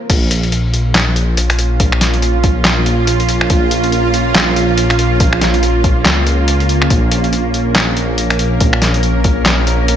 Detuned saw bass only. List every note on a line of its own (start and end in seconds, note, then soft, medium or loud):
0.10 0.93 A#1 loud
0.95 1.78 A#1 loud
1.80 2.63 A#1 loud
2.65 3.49 A#1 loud
3.50 4.34 A#1 loud
4.35 5.19 A#1 loud
5.20 6.04 A#1 loud
6.05 6.89 C#2 loud
6.90 7.74 A#1 loud
7.75 8.59 A#1 loud
8.61 9.44 A#1 loud
9.46 9.96 A#1 loud